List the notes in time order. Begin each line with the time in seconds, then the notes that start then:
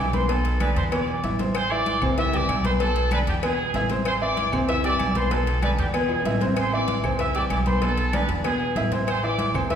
Already playing: B1 D5 D6
0.13 B3 B4 C5 B5 C6, cowbell, high conga
0.28 B2 B3 A4 B4 A5, cowbell, low agogo
0.45 cowbell, high conga, low agogo
0.60 D3 D4 B4 D5 B5, cowbell, high conga, low agogo, claves
0.76 E2 C5 C6, cowbell
0.92 B2 B3 B4 D5 D6, cowbell, high conga, low agogo, claves
1.07 high conga, low agogo
1.23 A1 E3 E4 E5, cowbell, high conga
1.39 C3 C4 C5, cowbell, high conga, low agogo
1.55 C5 C6, cowbell, low agogo, claves
1.70 E3 E4 D5 E5 D6, high conga, low agogo
1.86 cowbell, high conga, low agogo
2.02 C2 C3 C4 C5, high conga, low conga, low agogo, claves
2.18 E3 E4 E5 E6, cowbell, high conga, low conga
2.33 G3 G4 D5 G5 D6, cowbell, high conga, low agogo
2.49 B1, cowbell, high conga, low agogo, claves
2.64 B3 B4 C5 B5 C6, cowbell, high conga
2.80 B2 B3 A4 B4 A5, cowbell, low agogo
2.95 cowbell, high conga, low agogo
3.11 D3 D4 B4 D5 B5, cowbell, high conga, low agogo, claves
3.27 E2 G4 G5, cowbell
3.43 B2 B3 G#4 B4 G#5, cowbell, high conga, low agogo, claves
3.58 high conga, low agogo
3.74 A1 E3 E4 E5, cowbell, high conga, low timbale
3.90 C3 C4 C5, cowbell, high conga, low agogo
4.05 C5 C6, cowbell, low agogo, claves
4.21 E3 E4 D5 E5 D6, high conga, low agogo
4.37 cowbell, high conga, low agogo
4.52 C2 C3 C4 C5, high conga, low conga, low agogo, claves
4.69 E3 E4 E5 E6, cowbell, high conga
4.84 G3 G4 D5 G5 D6, cowbell, high conga, low agogo
4.99 B1, cowbell, high conga, low agogo, claves
5.15 B3 B4 C5 B5 C6, cowbell, high conga
5.31 B2 B3 A4 B4 A5, cowbell, high conga, low agogo
5.47 cowbell, high conga, low agogo
5.62 D3 D4 B4 D5 B5, cowbell, high conga, low agogo, claves
5.78 E2 G4 G5, cowbell
5.94 B2 B3 G#4 B4 G#5, cowbell, high conga, low agogo, claves
6.09 high conga, high timbale, low agogo
6.20 low timbale
6.25 A1 E3 E4 E5, cowbell, high conga
6.30 low timbale
6.41 C3 C4 C5, cowbell, high conga, low timbale, low agogo
6.56 C5 C6, cowbell, high conga, low agogo, claves
6.72 E3 E4 D5 E5 D6, high conga, low agogo
6.88 cowbell, high conga, low agogo
7.04 C2 C3 C4 C5, high conga, low conga, low agogo, claves
7.19 E3 E4 E5 E6, cowbell, high conga
7.35 G3 G4 D5 G5 D6, cowbell, high conga, low agogo
7.50 B1 D5 D6, cowbell, high conga, low agogo, claves
7.66 B3 B4 C5 B5 C6, cowbell, high conga
7.82 B2 B3 A4 B4 A5, cowbell, high conga, low agogo
7.97 cowbell, high conga, low agogo
8.13 D3 D4 B4 D5 B5, cowbell, high conga, low agogo, claves
8.29 E2, cowbell
8.44 B2 B3 G#4 B4 G#5, cowbell, high conga, low agogo, claves
8.60 high conga, low agogo
8.76 A1 E3 E4 E5, cowbell, high conga, low timbale
8.92 C3 C4 C5, cowbell, high conga, low agogo
9.07 C5 C6, cowbell, high conga, low agogo, claves
9.23 E3 E4 D5 E5 D6, high conga, low agogo
9.38 cowbell, high conga, low agogo
9.54 C2 C3 C4 C5, high conga, low conga, low agogo, claves
9.70 E3 E4 E5 E6, cowbell, high conga